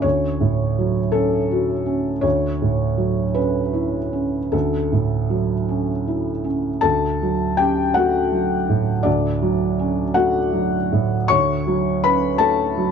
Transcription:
Already playing: C#4
0.02 D2 C#5
0.41 A2
0.79 F#3
1.12 C#4 A4
1.51 F#4
1.86 C#4
2.21 D2 C#5
2.62 A2
2.98 F#3
3.34 C#4 B4
3.74 E4
4.13 C#4
4.52 D2 A4
4.92 A2
5.30 F#3
5.68 C#4
6.07 E4
6.44 C#4
6.81 D2 A4 A5
7.23 F#3
7.57 C#4 G4 G5
7.94 A3 F#4 F#5
8.32 F#3
8.69 A2
9.03 D2 D4 D5
9.42 F#3
9.79 C#4
10.14 A3 F#4 F#5
10.53 F#3
10.92 A2
11.28 D2 C#5 C#6
11.67 F#3
12.04 C#4 B4 B5
12.38 A3 A4 A5
12.78 F#3

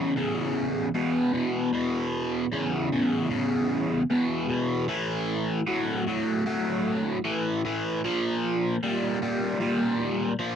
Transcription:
Already playing: E2 C#3
0.16 E2 C#3
0.94 E2 B2
1.33 E2 B2
1.73 E2 B2
2.52 E2 C#3
2.92 E2 C#3
3.30 E2 C#3
4.10 E2 B2
4.48 E2 B2
4.88 A2 E3
5.67 A2 F#3
6.07 A2 F#3
6.46 A2 F#3
7.25 A2 E3
7.65 A2 E3
8.04 A#2 F3
8.83 A#2 G3
9.22 A#2 G3
9.60 A#2 G3
10.39 A#2 F3

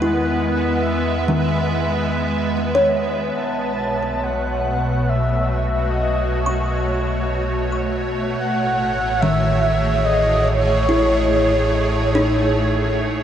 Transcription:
Already playing: E2 D#3 G#3 B3 B4 E5
0.00 E4 F#5
0.83 E5
1.28 D#3
2.75 C#5
3.35 B1 B2 A5
3.77 A3
4.23 F#5
4.76 F#4
5.09 E5
5.42 C#5
5.90 D#5
6.46 C#6
8.38 A1 A2 F#5
9.21 D#3 E5
9.36 G#4
10.05 D#5
10.48 C#5
10.89 E4
12.15 D#4

